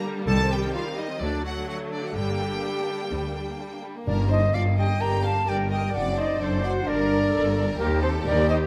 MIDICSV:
0, 0, Header, 1, 10, 480
1, 0, Start_track
1, 0, Key_signature, -2, "minor"
1, 0, Tempo, 465116
1, 287, Time_signature, 4, 2, 24, 8
1, 1728, Tempo, 477327
1, 4608, Tempo, 464396
1, 8875, End_track
2, 0, Start_track
2, 0, Title_t, "Flute"
2, 0, Program_c, 0, 73
2, 4135, Note_on_c, 0, 74, 70
2, 4195, Note_off_c, 0, 74, 0
2, 4371, Note_on_c, 0, 75, 83
2, 4610, Note_on_c, 0, 77, 81
2, 4625, Note_off_c, 0, 75, 0
2, 4850, Note_off_c, 0, 77, 0
2, 4862, Note_on_c, 0, 79, 74
2, 5093, Note_on_c, 0, 82, 83
2, 5108, Note_off_c, 0, 79, 0
2, 5333, Note_off_c, 0, 82, 0
2, 5345, Note_on_c, 0, 81, 82
2, 5589, Note_on_c, 0, 79, 80
2, 5604, Note_off_c, 0, 81, 0
2, 5817, Note_off_c, 0, 79, 0
2, 5823, Note_on_c, 0, 79, 72
2, 6066, Note_on_c, 0, 78, 82
2, 6082, Note_off_c, 0, 79, 0
2, 6306, Note_on_c, 0, 75, 76
2, 6322, Note_off_c, 0, 78, 0
2, 6530, Note_on_c, 0, 74, 72
2, 6546, Note_off_c, 0, 75, 0
2, 6782, Note_on_c, 0, 78, 76
2, 6797, Note_off_c, 0, 74, 0
2, 7017, Note_on_c, 0, 74, 89
2, 7033, Note_off_c, 0, 78, 0
2, 7961, Note_off_c, 0, 74, 0
2, 7967, Note_on_c, 0, 70, 79
2, 8204, Note_off_c, 0, 70, 0
2, 8213, Note_on_c, 0, 72, 85
2, 8275, Note_off_c, 0, 72, 0
2, 8452, Note_on_c, 0, 74, 82
2, 8687, Note_off_c, 0, 74, 0
2, 8695, Note_on_c, 0, 75, 80
2, 8757, Note_off_c, 0, 75, 0
2, 8875, End_track
3, 0, Start_track
3, 0, Title_t, "Viola section"
3, 0, Program_c, 1, 48
3, 0, Note_on_c, 1, 50, 71
3, 0, Note_on_c, 1, 55, 68
3, 279, Note_on_c, 1, 51, 61
3, 282, Note_off_c, 1, 50, 0
3, 1198, Note_off_c, 1, 55, 0
3, 1220, Note_off_c, 1, 51, 0
3, 1249, Note_on_c, 1, 54, 62
3, 1252, Note_on_c, 1, 50, 58
3, 2205, Note_on_c, 1, 55, 55
3, 2211, Note_off_c, 1, 54, 0
3, 3895, Note_off_c, 1, 55, 0
3, 3935, Note_off_c, 1, 50, 0
3, 5092, Note_on_c, 1, 67, 66
3, 5540, Note_off_c, 1, 67, 0
3, 5568, Note_on_c, 1, 70, 63
3, 6041, Note_off_c, 1, 70, 0
3, 6056, Note_on_c, 1, 74, 68
3, 6527, Note_on_c, 1, 72, 63
3, 6532, Note_off_c, 1, 74, 0
3, 7009, Note_off_c, 1, 72, 0
3, 7014, Note_on_c, 1, 70, 76
3, 7484, Note_on_c, 1, 69, 61
3, 7492, Note_off_c, 1, 70, 0
3, 7955, Note_off_c, 1, 69, 0
3, 7961, Note_on_c, 1, 67, 83
3, 8875, Note_off_c, 1, 67, 0
3, 8875, End_track
4, 0, Start_track
4, 0, Title_t, "Clarinet"
4, 0, Program_c, 2, 71
4, 274, Note_on_c, 2, 69, 97
4, 520, Note_on_c, 2, 67, 71
4, 535, Note_off_c, 2, 69, 0
4, 762, Note_off_c, 2, 67, 0
4, 769, Note_on_c, 2, 65, 72
4, 876, Note_off_c, 2, 65, 0
4, 1000, Note_on_c, 2, 63, 56
4, 1109, Note_off_c, 2, 63, 0
4, 1232, Note_on_c, 2, 62, 64
4, 1482, Note_on_c, 2, 66, 62
4, 1497, Note_off_c, 2, 62, 0
4, 1718, Note_off_c, 2, 66, 0
4, 1724, Note_on_c, 2, 66, 57
4, 1832, Note_off_c, 2, 66, 0
4, 1960, Note_on_c, 2, 62, 49
4, 2085, Note_on_c, 2, 66, 47
4, 2100, Note_off_c, 2, 62, 0
4, 2189, Note_off_c, 2, 66, 0
4, 2195, Note_on_c, 2, 67, 76
4, 3857, Note_off_c, 2, 67, 0
4, 8875, End_track
5, 0, Start_track
5, 0, Title_t, "French horn section"
5, 0, Program_c, 3, 60
5, 4134, Note_on_c, 3, 62, 69
5, 4355, Note_off_c, 3, 62, 0
5, 4383, Note_on_c, 3, 63, 61
5, 4487, Note_off_c, 3, 63, 0
5, 4616, Note_on_c, 3, 65, 61
5, 4723, Note_off_c, 3, 65, 0
5, 4843, Note_on_c, 3, 67, 63
5, 4953, Note_off_c, 3, 67, 0
5, 5079, Note_on_c, 3, 70, 72
5, 5310, Note_on_c, 3, 69, 53
5, 5321, Note_off_c, 3, 70, 0
5, 5424, Note_off_c, 3, 69, 0
5, 5562, Note_on_c, 3, 67, 65
5, 5799, Note_off_c, 3, 67, 0
5, 5811, Note_on_c, 3, 67, 67
5, 6042, Note_on_c, 3, 66, 77
5, 6047, Note_off_c, 3, 67, 0
5, 6287, Note_off_c, 3, 66, 0
5, 6287, Note_on_c, 3, 63, 58
5, 6516, Note_on_c, 3, 62, 60
5, 6524, Note_off_c, 3, 63, 0
5, 6750, Note_on_c, 3, 66, 68
5, 6763, Note_off_c, 3, 62, 0
5, 6978, Note_on_c, 3, 62, 76
5, 7000, Note_off_c, 3, 66, 0
5, 7952, Note_off_c, 3, 62, 0
5, 7955, Note_on_c, 3, 58, 79
5, 8067, Note_off_c, 3, 58, 0
5, 8209, Note_on_c, 3, 60, 58
5, 8318, Note_off_c, 3, 60, 0
5, 8433, Note_on_c, 3, 62, 69
5, 8545, Note_off_c, 3, 62, 0
5, 8681, Note_on_c, 3, 63, 74
5, 8790, Note_off_c, 3, 63, 0
5, 8875, End_track
6, 0, Start_track
6, 0, Title_t, "Violin section"
6, 0, Program_c, 4, 48
6, 288, Note_on_c, 4, 81, 94
6, 510, Note_off_c, 4, 81, 0
6, 532, Note_on_c, 4, 79, 81
6, 766, Note_on_c, 4, 77, 75
6, 768, Note_off_c, 4, 79, 0
6, 999, Note_off_c, 4, 77, 0
6, 1002, Note_on_c, 4, 75, 72
6, 1243, Note_off_c, 4, 75, 0
6, 1243, Note_on_c, 4, 74, 78
6, 1485, Note_off_c, 4, 74, 0
6, 1499, Note_on_c, 4, 78, 66
6, 1730, Note_off_c, 4, 78, 0
6, 1746, Note_on_c, 4, 78, 71
6, 1826, Note_off_c, 4, 78, 0
6, 1981, Note_on_c, 4, 74, 61
6, 2092, Note_off_c, 4, 74, 0
6, 2115, Note_on_c, 4, 78, 66
6, 2221, Note_on_c, 4, 79, 73
6, 2222, Note_off_c, 4, 78, 0
6, 3870, Note_off_c, 4, 79, 0
6, 4139, Note_on_c, 4, 62, 50
6, 4248, Note_off_c, 4, 62, 0
6, 4264, Note_on_c, 4, 58, 45
6, 4377, Note_on_c, 4, 62, 49
6, 4378, Note_off_c, 4, 58, 0
6, 4493, Note_off_c, 4, 62, 0
6, 4496, Note_on_c, 4, 58, 45
6, 4611, Note_off_c, 4, 58, 0
6, 4615, Note_on_c, 4, 62, 51
6, 4724, Note_off_c, 4, 62, 0
6, 4728, Note_on_c, 4, 58, 40
6, 4849, Note_off_c, 4, 58, 0
6, 4852, Note_on_c, 4, 62, 48
6, 4966, Note_on_c, 4, 58, 47
6, 4971, Note_off_c, 4, 62, 0
6, 5070, Note_on_c, 4, 62, 51
6, 5089, Note_off_c, 4, 58, 0
6, 5192, Note_off_c, 4, 62, 0
6, 5213, Note_on_c, 4, 58, 50
6, 5333, Note_off_c, 4, 58, 0
6, 5340, Note_on_c, 4, 62, 44
6, 5444, Note_on_c, 4, 58, 49
6, 5457, Note_off_c, 4, 62, 0
6, 5558, Note_on_c, 4, 62, 47
6, 5569, Note_off_c, 4, 58, 0
6, 5673, Note_on_c, 4, 58, 45
6, 5677, Note_off_c, 4, 62, 0
6, 5798, Note_on_c, 4, 62, 51
6, 5803, Note_off_c, 4, 58, 0
6, 5920, Note_on_c, 4, 58, 48
6, 5926, Note_off_c, 4, 62, 0
6, 6037, Note_on_c, 4, 62, 48
6, 6046, Note_off_c, 4, 58, 0
6, 6138, Note_on_c, 4, 60, 46
6, 6156, Note_off_c, 4, 62, 0
6, 6261, Note_on_c, 4, 62, 48
6, 6275, Note_off_c, 4, 60, 0
6, 6396, Note_off_c, 4, 62, 0
6, 6397, Note_on_c, 4, 60, 51
6, 6515, Note_on_c, 4, 62, 47
6, 6524, Note_off_c, 4, 60, 0
6, 6634, Note_off_c, 4, 62, 0
6, 6644, Note_on_c, 4, 60, 46
6, 6762, Note_on_c, 4, 62, 52
6, 6767, Note_off_c, 4, 60, 0
6, 6882, Note_on_c, 4, 60, 46
6, 6886, Note_off_c, 4, 62, 0
6, 7006, Note_off_c, 4, 60, 0
6, 7007, Note_on_c, 4, 62, 54
6, 7120, Note_off_c, 4, 62, 0
6, 7147, Note_on_c, 4, 58, 44
6, 7249, Note_on_c, 4, 62, 49
6, 7259, Note_off_c, 4, 58, 0
6, 7370, Note_off_c, 4, 62, 0
6, 7376, Note_on_c, 4, 58, 54
6, 7492, Note_on_c, 4, 62, 59
6, 7493, Note_off_c, 4, 58, 0
6, 7602, Note_off_c, 4, 62, 0
6, 7619, Note_on_c, 4, 58, 47
6, 7733, Note_off_c, 4, 58, 0
6, 7742, Note_on_c, 4, 62, 53
6, 7855, Note_off_c, 4, 62, 0
6, 7858, Note_on_c, 4, 58, 53
6, 7969, Note_on_c, 4, 63, 54
6, 7973, Note_off_c, 4, 58, 0
6, 8081, Note_off_c, 4, 63, 0
6, 8091, Note_on_c, 4, 58, 48
6, 8211, Note_off_c, 4, 58, 0
6, 8213, Note_on_c, 4, 63, 54
6, 8332, Note_off_c, 4, 63, 0
6, 8332, Note_on_c, 4, 58, 52
6, 8452, Note_off_c, 4, 58, 0
6, 8453, Note_on_c, 4, 63, 56
6, 8564, Note_off_c, 4, 63, 0
6, 8572, Note_on_c, 4, 58, 51
6, 8689, Note_on_c, 4, 63, 51
6, 8691, Note_off_c, 4, 58, 0
6, 8809, Note_off_c, 4, 63, 0
6, 8812, Note_on_c, 4, 58, 52
6, 8875, Note_off_c, 4, 58, 0
6, 8875, End_track
7, 0, Start_track
7, 0, Title_t, "Violin section"
7, 0, Program_c, 5, 48
7, 0, Note_on_c, 5, 62, 74
7, 58, Note_on_c, 5, 55, 55
7, 172, Note_off_c, 5, 55, 0
7, 186, Note_on_c, 5, 58, 53
7, 285, Note_off_c, 5, 62, 0
7, 297, Note_off_c, 5, 58, 0
7, 304, Note_on_c, 5, 55, 59
7, 304, Note_on_c, 5, 60, 52
7, 402, Note_off_c, 5, 60, 0
7, 407, Note_off_c, 5, 55, 0
7, 414, Note_on_c, 5, 60, 57
7, 530, Note_off_c, 5, 60, 0
7, 537, Note_on_c, 5, 55, 48
7, 651, Note_off_c, 5, 55, 0
7, 662, Note_on_c, 5, 60, 49
7, 761, Note_on_c, 5, 55, 57
7, 773, Note_off_c, 5, 60, 0
7, 882, Note_off_c, 5, 55, 0
7, 883, Note_on_c, 5, 60, 56
7, 997, Note_on_c, 5, 55, 55
7, 1003, Note_off_c, 5, 60, 0
7, 1119, Note_on_c, 5, 60, 47
7, 1120, Note_off_c, 5, 55, 0
7, 1241, Note_off_c, 5, 60, 0
7, 1244, Note_on_c, 5, 57, 50
7, 1352, Note_off_c, 5, 57, 0
7, 1364, Note_on_c, 5, 57, 46
7, 1472, Note_off_c, 5, 57, 0
7, 1484, Note_on_c, 5, 57, 45
7, 1592, Note_off_c, 5, 57, 0
7, 1604, Note_on_c, 5, 57, 43
7, 1720, Note_off_c, 5, 57, 0
7, 1733, Note_on_c, 5, 57, 51
7, 1844, Note_off_c, 5, 57, 0
7, 1856, Note_on_c, 5, 57, 49
7, 1964, Note_off_c, 5, 57, 0
7, 1976, Note_on_c, 5, 57, 42
7, 2082, Note_off_c, 5, 57, 0
7, 2094, Note_on_c, 5, 57, 42
7, 2211, Note_off_c, 5, 57, 0
7, 2221, Note_on_c, 5, 55, 46
7, 2225, Note_on_c, 5, 62, 53
7, 2328, Note_off_c, 5, 55, 0
7, 2343, Note_on_c, 5, 58, 49
7, 2457, Note_off_c, 5, 58, 0
7, 2470, Note_on_c, 5, 55, 43
7, 2581, Note_off_c, 5, 55, 0
7, 2586, Note_on_c, 5, 58, 39
7, 2700, Note_off_c, 5, 58, 0
7, 2708, Note_on_c, 5, 55, 47
7, 2821, Note_off_c, 5, 55, 0
7, 2841, Note_on_c, 5, 58, 42
7, 2948, Note_off_c, 5, 58, 0
7, 2951, Note_on_c, 5, 55, 46
7, 3063, Note_off_c, 5, 55, 0
7, 3065, Note_on_c, 5, 58, 44
7, 3176, Note_on_c, 5, 55, 42
7, 3180, Note_off_c, 5, 58, 0
7, 3288, Note_off_c, 5, 55, 0
7, 3310, Note_on_c, 5, 58, 37
7, 3422, Note_on_c, 5, 55, 41
7, 3423, Note_off_c, 5, 58, 0
7, 3539, Note_off_c, 5, 55, 0
7, 3550, Note_on_c, 5, 58, 36
7, 3659, Note_on_c, 5, 55, 45
7, 3663, Note_off_c, 5, 58, 0
7, 3778, Note_off_c, 5, 55, 0
7, 3778, Note_on_c, 5, 58, 37
7, 3898, Note_off_c, 5, 58, 0
7, 3900, Note_on_c, 5, 55, 42
7, 3905, Note_off_c, 5, 62, 0
7, 4014, Note_on_c, 5, 58, 36
7, 4018, Note_off_c, 5, 55, 0
7, 4123, Note_on_c, 5, 70, 71
7, 4134, Note_off_c, 5, 58, 0
7, 4349, Note_off_c, 5, 70, 0
7, 4366, Note_on_c, 5, 72, 65
7, 4601, Note_on_c, 5, 74, 70
7, 4606, Note_off_c, 5, 72, 0
7, 4683, Note_off_c, 5, 74, 0
7, 4843, Note_on_c, 5, 75, 65
7, 5082, Note_off_c, 5, 75, 0
7, 5096, Note_on_c, 5, 79, 75
7, 5320, Note_on_c, 5, 77, 64
7, 5335, Note_off_c, 5, 79, 0
7, 5567, Note_off_c, 5, 77, 0
7, 5569, Note_on_c, 5, 74, 75
7, 5652, Note_off_c, 5, 74, 0
7, 5803, Note_on_c, 5, 75, 59
7, 6043, Note_off_c, 5, 75, 0
7, 6058, Note_on_c, 5, 74, 73
7, 6290, Note_off_c, 5, 74, 0
7, 6291, Note_on_c, 5, 72, 62
7, 6528, Note_on_c, 5, 69, 62
7, 6531, Note_off_c, 5, 72, 0
7, 6765, Note_on_c, 5, 74, 64
7, 6769, Note_off_c, 5, 69, 0
7, 6848, Note_off_c, 5, 74, 0
7, 7001, Note_on_c, 5, 70, 78
7, 7944, Note_off_c, 5, 70, 0
7, 7965, Note_on_c, 5, 67, 76
7, 8199, Note_on_c, 5, 69, 75
7, 8208, Note_off_c, 5, 67, 0
7, 8446, Note_off_c, 5, 69, 0
7, 8448, Note_on_c, 5, 70, 82
7, 8682, Note_on_c, 5, 72, 64
7, 8690, Note_off_c, 5, 70, 0
7, 8765, Note_off_c, 5, 72, 0
7, 8875, End_track
8, 0, Start_track
8, 0, Title_t, "Timpani"
8, 0, Program_c, 6, 47
8, 4137, Note_on_c, 6, 43, 80
8, 4809, Note_off_c, 6, 43, 0
8, 8875, End_track
9, 0, Start_track
9, 0, Title_t, "Cello section"
9, 0, Program_c, 7, 48
9, 284, Note_on_c, 7, 36, 76
9, 663, Note_off_c, 7, 36, 0
9, 1244, Note_on_c, 7, 38, 56
9, 1627, Note_off_c, 7, 38, 0
9, 2210, Note_on_c, 7, 43, 55
9, 2592, Note_off_c, 7, 43, 0
9, 3177, Note_on_c, 7, 38, 48
9, 3557, Note_off_c, 7, 38, 0
9, 4127, Note_on_c, 7, 43, 63
9, 4548, Note_off_c, 7, 43, 0
9, 4603, Note_on_c, 7, 43, 58
9, 5031, Note_off_c, 7, 43, 0
9, 5089, Note_on_c, 7, 43, 61
9, 5515, Note_off_c, 7, 43, 0
9, 5567, Note_on_c, 7, 43, 56
9, 5993, Note_off_c, 7, 43, 0
9, 6049, Note_on_c, 7, 42, 59
9, 6473, Note_off_c, 7, 42, 0
9, 6520, Note_on_c, 7, 42, 67
9, 6948, Note_off_c, 7, 42, 0
9, 7002, Note_on_c, 7, 43, 62
9, 7429, Note_off_c, 7, 43, 0
9, 7477, Note_on_c, 7, 43, 68
9, 7905, Note_off_c, 7, 43, 0
9, 7953, Note_on_c, 7, 39, 72
9, 8387, Note_off_c, 7, 39, 0
9, 8439, Note_on_c, 7, 39, 72
9, 8866, Note_off_c, 7, 39, 0
9, 8875, End_track
10, 0, Start_track
10, 0, Title_t, "Double bass section"
10, 0, Program_c, 8, 48
10, 288, Note_on_c, 8, 36, 77
10, 665, Note_off_c, 8, 36, 0
10, 1244, Note_on_c, 8, 38, 64
10, 1627, Note_off_c, 8, 38, 0
10, 2212, Note_on_c, 8, 31, 60
10, 2594, Note_off_c, 8, 31, 0
10, 3178, Note_on_c, 8, 38, 53
10, 3557, Note_off_c, 8, 38, 0
10, 4135, Note_on_c, 8, 31, 65
10, 4553, Note_off_c, 8, 31, 0
10, 4607, Note_on_c, 8, 31, 63
10, 5033, Note_off_c, 8, 31, 0
10, 5096, Note_on_c, 8, 31, 61
10, 5519, Note_off_c, 8, 31, 0
10, 5568, Note_on_c, 8, 31, 61
10, 5994, Note_off_c, 8, 31, 0
10, 6050, Note_on_c, 8, 30, 66
10, 6473, Note_off_c, 8, 30, 0
10, 6532, Note_on_c, 8, 30, 69
10, 6954, Note_off_c, 8, 30, 0
10, 7004, Note_on_c, 8, 31, 67
10, 7431, Note_off_c, 8, 31, 0
10, 7486, Note_on_c, 8, 31, 68
10, 7909, Note_off_c, 8, 31, 0
10, 7968, Note_on_c, 8, 39, 77
10, 8394, Note_off_c, 8, 39, 0
10, 8455, Note_on_c, 8, 39, 76
10, 8874, Note_off_c, 8, 39, 0
10, 8875, End_track
0, 0, End_of_file